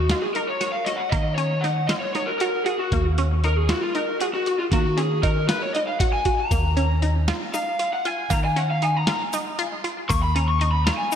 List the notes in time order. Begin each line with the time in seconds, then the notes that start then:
Already playing: D#2 F#4
0.10 F4, snare, closed hi-hat
0.22 G#4
0.34 D#4 A#4, closed hi-hat
0.47 C#5
0.61 F#4, snare, closed hi-hat
0.72 F5
0.85 F#4 D#5, snare, closed hi-hat
0.96 F#5
1.09 D#3 A#3 D#5, kick, closed hi-hat
1.35 C#4 C#5, closed hi-hat
1.61 D#4 F#5, snare, closed hi-hat
1.87 F4 D#5, snare, closed hi-hat
2.00 C#5
2.13 D#4 C#5, snare, closed hi-hat
2.26 A#4
2.39 F#4 A#4, closed hi-hat
2.65 F#4 G#4, closed hi-hat
2.78 F#4
2.92 D#2 A#3, kick, closed hi-hat
3.18 C#4, closed hi-hat
3.44 D#4 A#4, closed hi-hat
3.56 G#4
3.69 F4 F#4, snare, closed hi-hat
3.82 F4
3.95 D#4 A#4, closed hi-hat
4.20 F#4 G#4, closed hi-hat
4.34 F#4
4.46 F#4, closed hi-hat
4.59 F4
4.72 D#3 A#3 F#4, kick, closed hi-hat
4.97 C#4 G#4, closed hi-hat
5.23 D#4 A#4, kick, closed hi-hat
5.49 F4 B4, snare, closed hi-hat
5.62 C#5
5.74 D#4 D#5, closed hi-hat
5.87 F5
6.00 F#4 F#5, kick, closed hi-hat
6.13 G#5
6.25 F#4, kick, closed hi-hat
6.38 A#5
6.51 D#2 A#3, kick, closed hi-hat, shaker
6.77 C#4, closed hi-hat
7.02 D#4, closed hi-hat
7.28 F4, snare, closed hi-hat
7.54 D#4 F5, closed hi-hat, shaker
7.79 F4, closed hi-hat
7.93 F#5
8.05 F4 G#5, closed hi-hat
8.30 D#3 A#3 A#5, kick, closed hi-hat, shaker
8.45 G#5
8.56 C#4 F#5, closed hi-hat
8.70 F5
8.82 D#4 G#5, closed hi-hat
8.97 A#5
9.07 F4, snare, closed hi-hat
9.33 D#4, closed hi-hat, shaker
9.59 F4, closed hi-hat
9.84 F4, closed hi-hat
10.09 D#2 A#3 C#6, kick, closed hi-hat, shaker
10.22 B5
10.36 C#4 A#5, closed hi-hat
10.48 C#6
10.60 D#4 C#6, closed hi-hat
10.71 B5
10.85 F4 A#5, snare, closed hi-hat
10.97 G#5
11.12 D#4, shaker